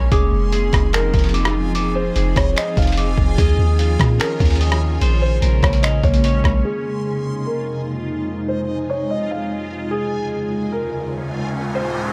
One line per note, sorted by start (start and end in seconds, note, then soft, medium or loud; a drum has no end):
0.00 0.11 A#1 loud
0.00 0.10 G#3 medium
0.00 0.10 A#3 medium
0.00 0.12 A#3 medium
0.00 0.11 C#4 medium
0.00 0.12 A#4 loud
0.00 0.12 C#5 medium
0.11 0.31 F1 loud
0.11 3.35 F3 medium
0.11 3.35 C4 medium
0.11 3.35 D#4 medium
0.11 4.98 F4 medium
0.11 4.97 G#4 medium
0.11 0.89 G#4 loud
0.11 3.35 D#5 medium
0.11 4.98 G#5 medium
0.11 1.33 D6 loud
0.11 kick loud
0.11 closed hi-hat medium
0.32 0.71 F1 loud
0.52 1.75 G#4 loud
0.52 closed hi-hat medium
0.73 1.12 F1 loud
0.73 kick loud
0.73 cross-stick loud
0.73 closed hi-hat medium
0.93 2.16 D#4 loud
0.93 1.32 A#4 loud
0.93 finger snap loud
0.93 closed hi-hat medium
1.14 2.12 F1 loud
1.14 2.36 F3 medium
1.14 kick loud
1.14 closed hi-hat medium
1.19 closed hi-hat medium
1.24 closed hi-hat medium
1.29 closed hi-hat medium
1.34 1.74 D6 loud
1.34 closed hi-hat medium
1.45 cross-stick loud
1.75 2.96 D6 loud
1.75 closed hi-hat medium
1.95 2.34 C5 medium
2.16 2.35 F1 loud
2.16 3.38 G#4 medium
2.16 closed hi-hat medium
2.36 2.56 F1 loud
2.36 2.56 C#5 medium
2.36 kick loud
2.36 cross-stick loud
2.36 closed hi-hat medium
2.56 3.38 D#4 medium
2.56 2.76 D#5 medium
2.56 finger snap loud
2.56 closed hi-hat medium
2.77 3.16 F1 loud
2.77 3.38 F3 medium
2.77 2.97 F5 medium
2.77 kick loud
2.77 closed hi-hat medium
2.82 closed hi-hat medium
2.87 closed hi-hat medium
2.92 closed hi-hat medium
2.97 3.38 D6 loud
2.97 closed hi-hat medium
3.18 3.37 F1 loud
3.18 kick medium
3.38 3.58 D#2 loud
3.38 5.00 D#3 medium
3.38 5.00 C#4 medium
3.38 5.00 F4 medium
3.38 4.16 G#4 loud
3.38 4.60 D#5 loud
3.38 kick loud
3.38 closed hi-hat medium
3.59 3.98 D#2 loud
3.79 5.01 F4 medium
3.79 closed hi-hat medium
3.99 4.19 A#2 loud
3.99 kick loud
3.99 cross-stick loud
3.99 closed hi-hat medium
4.19 5.02 C#4 medium
4.19 4.58 A#4 medium
4.19 finger snap loud
4.19 closed hi-hat medium
4.40 4.99 D#2 loud
4.40 5.01 D#3 medium
4.40 kick loud
4.40 closed hi-hat medium
4.45 closed hi-hat medium
4.50 closed hi-hat medium
4.56 closed hi-hat medium
4.61 5.01 D#5 loud
4.61 closed hi-hat medium
4.72 cross-stick loud
5.01 5.41 A#1 loud
5.01 6.63 C#3 medium
5.01 6.63 G#3 medium
5.01 6.63 A#3 medium
5.01 6.24 C5 loud
5.01 closed hi-hat medium
5.22 5.60 C5 medium
5.42 5.62 A#1 loud
5.42 6.65 A#4 medium
5.42 closed hi-hat medium
5.63 6.02 A#1 loud
5.63 5.82 C#5 medium
5.63 kick medium
5.63 cross-stick loud
5.63 closed hi-hat soft
5.63 open hi-hat soft
5.73 closed hi-hat medium
5.83 6.65 C#4 medium
5.83 6.02 D#5 medium
5.83 finger snap loud
5.83 closed hi-hat medium
6.03 6.43 A#1 loud
6.03 6.65 A#3 medium
6.03 6.61 C#5 medium
6.03 kick loud
6.03 closed hi-hat soft
6.14 closed hi-hat medium
6.24 6.65 C#5 medium
6.24 closed hi-hat medium
6.44 6.64 A#1 loud
6.44 kick medium
6.44 cross-stick loud
6.65 9.88 F2 medium
6.65 9.88 C3 medium
6.65 12.13 G#3 medium
6.65 9.88 D#4 medium
6.65 11.51 F4 medium
6.65 7.42 G#4 loud
6.65 9.88 D#5 medium
6.65 12.13 G#5 medium
7.46 7.85 A#4 medium
8.48 8.87 C5 medium
8.90 9.09 C#5 medium
9.10 9.29 D#5 medium
9.31 9.50 F5 medium
9.91 11.53 D#2 medium
9.91 11.53 C#3 medium
9.91 12.13 C#4 medium
9.91 11.53 F4 medium
9.91 10.69 G#4 medium
9.91 riser medium
10.72 11.11 A#4 medium
11.54 12.13 A#2 medium
11.54 12.13 C#4 medium
11.54 12.13 A#4 medium
11.75 12.13 C5 medium